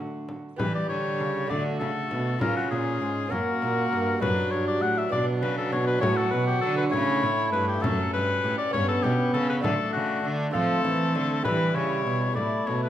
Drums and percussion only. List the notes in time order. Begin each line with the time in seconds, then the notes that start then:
0.29 frame drum
0.60 frame drum
1.51 frame drum
1.81 frame drum
2.11 frame drum
2.41 frame drum
3.32 frame drum
3.62 frame drum
3.93 frame drum
4.22 frame drum
5.13 frame drum
5.43 frame drum
5.73 frame drum
6.03 frame drum
6.93 frame drum
7.23 frame drum
7.53 frame drum
7.84 frame drum
8.74 frame drum
9.04 frame drum
9.35 frame drum
9.64 frame drum
10.55 frame drum
10.85 frame drum
11.15 frame drum
11.45 frame drum
12.37 frame drum
12.67 frame drum